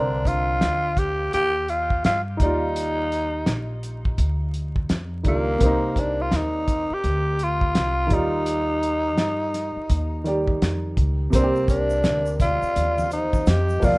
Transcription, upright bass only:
0.00 0.58 C2 medium
0.62 1.30 D2 medium
1.34 2.01 D#2 medium
2.05 2.38 G2 medium
2.40 3.43 D#2 medium
3.47 4.15 A#1 medium
4.18 4.86 D2 medium
4.90 5.24 F2 medium
5.25 5.59 C#2 medium
5.61 6.29 C2 medium
6.32 6.87 D#2 medium
6.90 muted upright bass stroke soft
7.04 7.72 D2 medium
7.75 8.09 C2 medium
8.11 9.18 D#2 medium
9.18 9.73 G2 medium
9.76 muted upright bass stroke soft
9.90 10.58 D#2 medium
10.62 10.95 F2 medium
10.97 11.31 C#2 medium
11.33 12.01 C2 medium
12.05 12.59 D2 medium
12.62 muted upright bass stroke soft
12.76 13.44 D#2 medium
13.47 13.81 F2 loud
13.83 13.98 D#2 medium

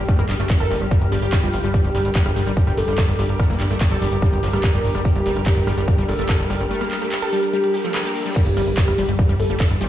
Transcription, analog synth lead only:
0.60 0.82 A#4 loud
0.91 1.13 A#4 loud
1.22 1.37 G4 medium
1.43 1.64 F4 loud
1.74 2.03 G4 loud
2.15 2.37 G4 medium
2.78 2.99 A4 loud
3.91 4.13 G4 medium
4.22 4.44 G4 loud
4.53 4.68 G4 medium
4.74 4.95 A#4 loud
5.05 5.34 G4 loud
5.46 5.68 G4 loud
6.09 6.30 A4 loud
7.22 7.44 G4 loud
7.53 7.75 G4 loud
7.84 7.99 A4 medium
8.05 8.26 A#4 loud
8.36 8.65 G4 loud
8.77 8.99 G4 loud
9.40 9.61 A4 loud

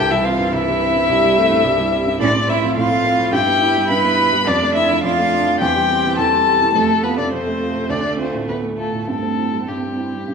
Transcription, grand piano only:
0.00 0.51 C2 loud
0.11 0.33 G3 medium
0.25 0.47 C4 medium
0.39 0.61 G2 medium
0.53 1.08 C2 medium
0.68 0.90 G3 medium
0.82 1.04 C4 medium
0.95 1.18 G2 medium
1.09 1.63 C2 medium
1.23 1.45 G3 medium
1.37 1.59 C4 medium
1.51 1.73 G2 medium
1.65 2.19 C2 medium
1.78 2.01 G3 medium
1.92 2.14 C4 medium
2.06 2.20 G2 medium
2.20 2.75 A2 loud
2.34 2.57 A3 medium
2.48 2.71 C4 medium
2.63 2.85 F3 medium
2.77 3.32 A2 medium
2.90 3.13 A3 medium
3.05 3.27 C4 medium
3.18 3.33 F3 medium
3.32 3.89 G2 loud
3.47 3.70 B3 medium
3.61 3.84 E4 medium
3.76 3.98 G3 medium
3.90 4.45 G2 medium
4.04 4.27 B3 medium
4.19 4.41 E4 medium
4.33 4.47 G3 medium
4.47 5.02 F2 loud
4.61 4.84 A3 medium
4.75 4.98 D4 medium
4.90 5.13 F3 medium
5.04 5.59 F2 medium
5.18 5.41 A3 medium
5.33 5.55 D4 medium
5.47 5.61 F3 medium
5.62 6.17 E2 loud
5.76 5.98 G3 medium
5.90 6.13 G4 medium
6.05 6.27 E3 medium
6.18 6.74 E2 medium
6.32 6.55 G3 medium
6.47 6.70 G4 medium
6.61 6.75 E3 medium
6.75 7.31 F2 medium
6.89 7.12 A3 medium
7.03 7.26 F4 medium
7.18 7.41 C3 medium
7.33 7.88 F2 medium
7.46 7.69 A3 medium
7.61 7.84 F4 medium
7.75 7.89 C3 medium
7.90 8.47 D2 medium
8.04 8.28 A3 medium
8.19 8.42 F4 medium
8.34 8.57 A2 medium
8.48 9.06 D2 medium
8.62 8.86 A3 medium
8.78 9.02 F4 medium
8.93 9.08 A2 soft
9.08 9.66 G2 medium
9.23 9.47 C4 soft
9.38 9.62 E4 soft
9.53 9.77 G3 soft
9.68 10.26 G2 medium
9.83 10.07 C4 soft
9.97 10.22 E4 medium
10.13 10.28 G3 soft
10.28 10.34 G2 medium

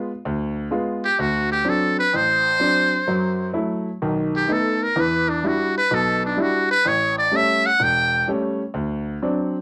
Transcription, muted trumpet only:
1.05 1.22 G4 medium
1.20 1.51 F#4 medium
1.52 1.71 G4 medium
1.70 1.99 A4 medium
1.99 2.18 B4 medium
2.16 3.56 C5 medium
4.36 4.54 G4 medium
4.53 4.85 A4 medium
4.83 5.02 A#4 medium
5.01 5.31 B4 medium
5.30 5.49 D4 medium
5.48 5.77 F#4 medium
5.78 5.96 B4 medium
5.94 6.24 A4 medium
6.25 6.43 D4 medium
6.41 6.70 F#4 medium
6.71 6.89 B4 medium
6.88 7.18 C#5 medium
7.18 7.38 D5 medium
7.36 7.68 E5 medium
7.66 7.85 F#5 medium
7.83 8.29 G5 loud

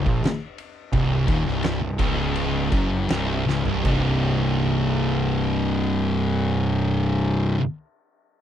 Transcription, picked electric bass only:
0.06 0.22 A#1 medium
0.22 muted picked electric bass stroke soft
0.93 1.25 C1 loud
1.28 1.44 D#1 loud
1.47 1.79 C1 loud
1.82 1.98 C1 medium
1.99 2.68 C#1 loud
2.72 3.07 F#1 loud
3.09 3.44 C1 medium
3.47 3.65 C#1 loud
3.66 3.83 C1 loud
3.85 7.54 C1 loud

